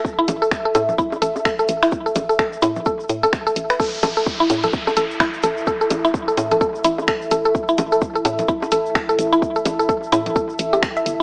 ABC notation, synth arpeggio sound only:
X:1
M:4/4
L:1/16
Q:"Swing 16ths" 1/4=128
K:C
V:1 name="Synth arpeggio sound"
z E z A z A A z E z A z A A z E | z A z A A z E z A z2 A z A z B | A z A A z E z A z A A z E z A z | A A z E z A z A A z E z A z A A |
z E z A z A A z E z A z A A z E | z A z A A z E z A z2 G z e z2 |]